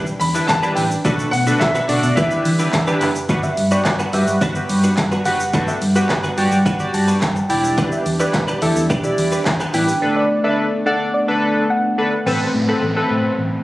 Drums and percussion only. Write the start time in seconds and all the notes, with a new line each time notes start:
0.07 shaker
0.21 open hi-hat, shaker
0.35 shaker
0.49 kick, snare, clap, closed hi-hat, shaker
0.63 shaker
0.77 open hi-hat, shaker
0.91 shaker
1.05 kick, closed hi-hat, shaker
1.19 shaker
1.33 open hi-hat, shaker
1.47 shaker
1.61 kick, snare, clap, closed hi-hat, shaker
1.75 shaker
1.89 open hi-hat, shaker
2.03 shaker
2.17 kick, closed hi-hat, shaker
2.31 shaker
2.45 open hi-hat, shaker
2.59 shaker
2.73 kick, snare, clap, closed hi-hat, shaker
2.87 shaker
3.01 clap, open hi-hat, shaker
3.15 shaker
3.29 kick, closed hi-hat, shaker
3.43 shaker
3.57 open hi-hat, shaker
3.71 shaker
3.85 kick, snare, clap, closed hi-hat, shaker
3.99 shaker
4.13 open hi-hat, shaker
4.27 shaker
4.41 kick, closed hi-hat, shaker
4.55 shaker
4.69 open hi-hat, shaker
4.83 shaker
4.97 kick, snare, clap, closed hi-hat, shaker
5.12 shaker
5.25 open hi-hat, shaker
5.40 shaker
5.53 kick, closed hi-hat, shaker
5.68 shaker
5.82 open hi-hat, shaker
5.95 shaker
6.10 kick, snare, clap, closed hi-hat, shaker
6.24 shaker
6.38 open hi-hat, shaker
6.52 shaker
6.66 kick, closed hi-hat, shaker
6.80 shaker
6.94 open hi-hat, shaker
7.08 shaker
7.22 kick, snare, clap, closed hi-hat, shaker
7.36 shaker
7.50 open hi-hat, shaker
7.64 shaker
7.78 kick, closed hi-hat, shaker
7.92 shaker
8.06 open hi-hat, shaker
8.20 shaker
8.34 kick, snare, clap, closed hi-hat, shaker
8.48 shaker
8.62 open hi-hat, shaker
8.76 shaker
8.90 kick, closed hi-hat, shaker
9.04 shaker
9.18 open hi-hat, shaker
9.32 shaker
9.46 kick, snare, clap, closed hi-hat, shaker
9.60 shaker
9.74 open hi-hat, shaker
9.88 shaker